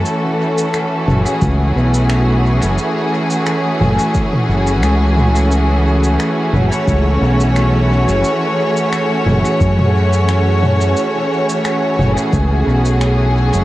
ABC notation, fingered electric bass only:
X:1
M:4/4
L:1/16
Q:"Swing 16ths" 1/4=88
K:F#m
V:1 name="Fingered electric bass" clef=bass
z6 F,,, z C,,2 B,,,4- B,,, F,,, | z6 F,,, z3 F,,,2 C,,4- | C,,4 z2 F,,, z C,,2 B,,,4- B,,, F,,, | z6 F,,, z F,,8 |
z6 F,,, z C,,2 B,,,4- B,,, F,,, |]